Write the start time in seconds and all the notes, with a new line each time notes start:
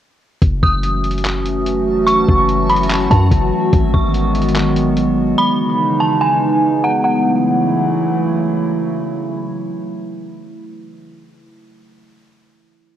0.42 F#1 E3 F#3 A3 C#4 F#4 E5 A5, kick, closed hi-hat
0.63 F#1 D#6, kick
0.83 closed hi-hat
1.04 closed hi-hat
1.11 closed hi-hat
1.18 closed hi-hat
1.24 clap, closed hi-hat
1.46 closed hi-hat
1.66 closed hi-hat
2.06 C#6, closed hi-hat
2.28 F#1, kick
2.49 closed hi-hat
2.69 B5, closed hi-hat
2.76 closed hi-hat
2.83 closed hi-hat
2.90 clap, closed hi-hat
3.11 F#2 A5, kick, closed hi-hat
3.31 F#1, kick, closed hi-hat
3.73 G#1 D#3 G#3 B3, kick, closed hi-hat
3.94 G#1 C#6, kick
4.14 closed hi-hat
4.35 closed hi-hat
4.42 closed hi-hat
4.49 closed hi-hat
4.55 clap, closed hi-hat
4.77 closed hi-hat
4.97 closed hi-hat
5.38 C#3 E3 G#3 D#4 B5
6.00 A5
6.21 G#5
6.84 F#5
7.04 C#3 E3 F#3 A3 E4 F#5